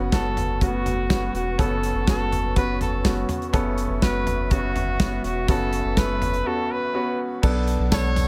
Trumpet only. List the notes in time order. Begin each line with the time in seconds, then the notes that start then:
0.14 A4
0.63 F#4
1.36 F#4
1.60 A4
2.09 A4
2.58 B4
2.82 A4
4.03 B4
4.52 F#4
5.25 F#4
5.49 A4
5.98 B4
6.47 A4
6.72 B4
7.93 C#5